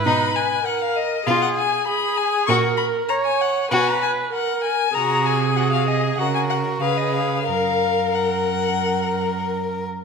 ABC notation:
X:1
M:4/4
L:1/16
Q:1/4=97
K:F#
V:1 name="Violin"
b2 g2 f e d2 =f ^f _a2 _c'2 a2 | c'2 b2 a g f2 g a g2 f2 g2 | a2 g2 f e d2 f g f2 e d e2 | e4 f8 z4 |]
V:2 name="Viola"
B4 A4 _A4 A4 | A4 c4 B4 A4 | G8 F4 G4 | A12- A2 z2 |]
V:3 name="Violin"
D2 z6 =F2 z6 | F2 z6 F2 z6 | F4 F2 G2 A4 B4 | A4 A8- A2 z2 |]
V:4 name="Cello" clef=bass
B,,4 z4 _C,4 z4 | A,,4 z4 B,,4 z4 | ^B,,8 C,4 C,4 | F,,12- F,,2 z2 |]